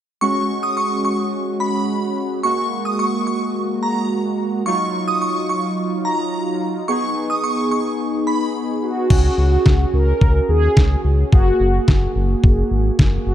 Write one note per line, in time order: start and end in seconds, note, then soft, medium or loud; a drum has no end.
0.21 2.40 G#3 medium
0.21 2.40 C#4 medium
0.21 2.40 F#4 medium
0.21 0.43 C#6 medium
0.63 0.74 D#6 medium
0.77 0.99 C#6 medium
1.05 1.16 C#6 medium
1.60 1.99 B5 medium
2.43 4.62 G#3 medium
2.43 4.62 A#3 medium
2.43 4.62 F#4 medium
2.43 2.66 C#6 medium
2.85 2.96 D#6 medium
2.99 3.21 C#6 medium
3.27 3.38 C#6 medium
3.83 4.05 A#5 medium
4.66 6.84 F#3 medium
4.66 6.84 D#4 medium
4.66 6.84 F4 medium
4.66 4.88 C#6 medium
5.08 5.19 D#6 medium
5.22 5.44 C#6 medium
5.49 5.60 C#6 medium
6.05 6.44 A#5 medium
6.88 9.06 B3 medium
6.88 9.06 D#4 medium
6.88 9.06 G#4 medium
6.88 7.10 C#6 medium
7.30 7.41 D#6 medium
7.44 7.66 C#6 medium
7.71 7.82 C#6 medium
8.27 8.49 B5 medium
8.83 9.97 F#4 medium
9.10 9.30 C#2 loud
9.10 11.29 C#4 medium
9.10 11.29 F#4 medium
9.10 11.29 G#4 medium
9.10 kick loud
9.10 crash medium
9.38 9.58 C#2 loud
9.66 9.85 C#2 loud
9.66 kick loud
9.66 snare loud
9.94 10.13 C#2 medium
9.94 10.51 A#4 loud
10.21 10.41 C#2 loud
10.21 kick loud
10.49 10.69 D#2 medium
10.49 11.01 G#4 medium
10.77 10.96 C#2 medium
10.77 kick loud
10.77 snare loud
11.05 11.24 C#2 loud
11.32 11.52 F#1 loud
11.32 13.34 A#3 medium
11.32 13.34 F#4 medium
11.32 12.12 F#4 loud
11.32 13.34 G#4 medium
11.32 kick loud
11.60 11.80 F#1 loud
11.88 12.07 F#1 loud
11.88 kick loud
11.88 snare loud
12.16 12.35 F#1 loud
12.44 12.63 F#1 loud
12.44 kick loud
12.71 12.91 G#1 medium
12.99 13.18 F#1 loud
12.99 kick loud
12.99 snare loud
13.27 13.34 F#1 loud
13.27 13.34 F#4 loud